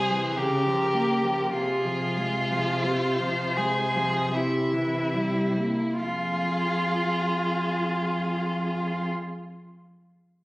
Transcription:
Already playing: C3 G3 G#4 C5
0.11 E3
0.37 C#3 G4 A#4
0.66 F3
0.95 A#3
1.24 F3
1.54 C3 F4 G#4
1.85 F3
2.17 G#3
2.51 F3
2.84 C3 C5
3.20 F3
3.57 G#3 G#4
3.95 F3
4.33 C3 E4 E5
4.74 E3
5.15 G3
5.58 A#3
5.99 F2 F4 G#4

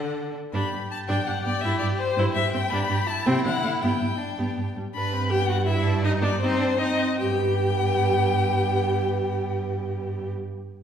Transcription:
Already playing: D3 D4 A4 F#5
0.53 G2 D4 G4 B5
0.73 G2 D4
0.91 A5
1.08 G2 D4 G5
1.27 G2 D4 F#5
1.44 G2 B3 D5
1.61 G2 E4 E5
1.78 E4 D5
1.83 G2
1.97 C5
2.17 G2 E4
2.34 G2 E4 E5
2.52 G2 C4 G5
2.70 G2 D4 G4 B5
2.89 G2 D4
3.07 E4 A5
3.26 C3 C4 G5
3.45 D3 C4 F#5
3.63 D3 A3
3.82 G2 B3 G5
4.01 G2 B3
4.17 D4
4.38 G2 B3
4.56 G2 B3
4.76 G2 G3
4.94 G2 D4 B4 B5
5.13 C4
5.30 B3 G4 G5
5.47 F#4 F#5
5.66 E4 E5
5.84 D4
6.04 D#4 D#5
6.22 D4 D5
6.40 C4 D#4 C5
6.61 D4
6.78 C4 D#4 D#5
7.18 G2 B3 G4 G5

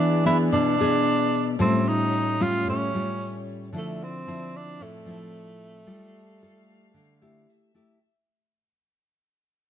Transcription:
Already playing: E3 B3 D4 E4 G#4 D5
0.25 B3 D4 E4 G#4, shaker
0.52 B2 D4, shaker
0.79 B3 D4 G#4, shaker
1.04 shaker
1.32 shaker
1.59 A2 G3 A3 C4 C#4 F4 G4 C#5, shaker
1.86 D#4, shaker
2.12 shaker
2.39 G3 C#4 F4, shaker
2.65 A2 C#4, shaker
2.92 G3 C#4 F4, shaker
3.20 shaker
3.48 shaker
3.71 D3 F3 C4 E4 D5, shaker
3.78 A3
4.02 C4, shaker
4.27 F3 C4 E4, shaker
4.55 D4, shaker
4.80 A2 A3, shaker
5.06 F3 C4 E4, shaker
5.35 shaker
5.62 shaker
5.87 G3 A3 F4 G4 A4 F5, shaker
6.16 shaker
6.42 F4 A4, shaker
6.69 shaker
6.94 D3, shaker
7.21 A3 E4 G4, shaker
7.49 A3 E5, shaker
7.74 A3 E4 G4, shaker

